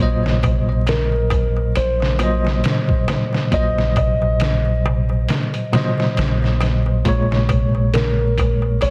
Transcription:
0.00 1.72 A#1 medium
0.00 2.15 A#2 medium
0.00 2.16 F#3 medium
0.00 2.16 C5 medium
0.00 2.17 D#5 medium
0.24 snare medium
0.24 darbuka tek soft
0.42 kick medium
0.42 closed hi-hat medium
0.42 darbuka tek medium
0.42 darbuka dum medium
0.69 darbuka tek soft
0.87 1.72 A#4 medium
0.87 snare loud
0.87 closed hi-hat medium
0.87 darbuka tek medium
1.13 darbuka tek soft
1.30 kick medium
1.30 closed hi-hat medium
1.30 darbuka tek medium
1.57 darbuka tek soft
1.76 2.61 A#1 loud
1.76 3.58 C5 medium
1.76 closed hi-hat medium
1.76 darbuka tek medium
2.00 snare soft
2.00 darbuka tek soft
2.19 3.47 A#2 medium
2.19 3.48 F#3 medium
2.19 3.49 C5 medium
2.19 closed hi-hat medium
2.19 darbuka tek medium
2.23 3.49 D#5 medium
2.45 snare soft
2.45 darbuka tek soft
2.64 snare loud
2.64 closed hi-hat medium
2.64 darbuka tek soft
2.88 kick medium
2.88 darbuka tek soft
3.08 snare medium
3.08 closed hi-hat medium
3.08 darbuka tek medium
3.33 snare soft
3.33 darbuka tek soft
3.51 5.25 A#1 medium
3.51 5.68 A#2 medium
3.51 5.68 F#3 medium
3.51 5.69 C5 medium
3.51 3.96 D#5 loud
3.51 kick loud
3.51 closed hi-hat medium
3.51 darbuka tek medium
3.55 5.70 D#5 medium
3.78 snare soft
3.78 darbuka tek soft
3.96 5.70 D#5 loud
3.96 kick medium
3.96 closed hi-hat medium
3.96 darbuka tek loud
3.96 darbuka dum medium
4.22 darbuka tek soft
4.40 snare loud
4.40 closed hi-hat medium
4.40 darbuka tek medium
4.66 darbuka tek soft
4.85 darbuka tek medium
4.85 darbuka dum medium
5.10 darbuka tek soft
5.29 snare medium
5.29 closed hi-hat medium
5.29 darbuka tek soft
5.54 closed hi-hat soft
5.54 darbuka tek soft
5.72 7.00 A#2 medium
5.72 7.01 F#3 medium
5.72 7.01 C5 medium
5.72 7.02 D#5 medium
5.72 snare loud
5.72 closed hi-hat medium
5.72 darbuka tek medium
5.72 darbuka dum medium
5.98 snare medium
5.98 darbuka tek soft
6.17 7.02 A#1 loud
6.17 snare loud
6.17 closed hi-hat medium
6.17 darbuka tek soft
6.42 snare soft
6.42 darbuka tek soft
6.61 snare soft
6.61 closed hi-hat medium
6.61 darbuka tek medium
6.86 darbuka tek soft
7.05 8.78 A#1 medium
7.05 8.90 A#2 medium
7.05 8.90 G#3 medium
7.05 kick loud
7.05 closed hi-hat medium
7.05 darbuka tek soft
7.09 8.90 C#5 medium
7.31 snare medium
7.31 darbuka tek soft
7.49 kick medium
7.49 closed hi-hat medium
7.49 darbuka tek medium
7.49 darbuka dum medium
7.75 darbuka tek soft
7.94 8.78 A#4 medium
7.94 snare loud
7.94 closed hi-hat medium
7.94 darbuka tek medium
8.19 darbuka tek soft
8.38 kick medium
8.38 closed hi-hat medium
8.38 darbuka tek medium
8.62 darbuka tek soft
8.81 8.90 A#1 loud
8.81 8.90 C#5 loud
8.81 closed hi-hat medium
8.81 darbuka tek medium

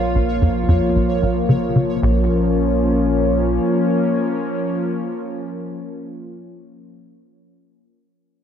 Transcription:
0.00 2.00 A#1 medium
0.00 1.98 F3 medium
0.00 1.98 A#3 medium
0.00 2.01 F4 medium
0.00 2.03 C#5 medium
0.15 0.23 A#1 medium
0.42 0.50 F2 medium
0.68 0.82 F2 loud
0.95 1.08 A#1 medium
1.22 1.42 A#1 medium
1.49 1.57 C#3 medium
1.75 1.89 C#3 medium
2.02 2.27 A#1 medium
2.02 3.59 A#1 medium
2.02 6.05 F3 medium
2.02 6.05 A#3 medium
2.02 6.05 C#4 medium

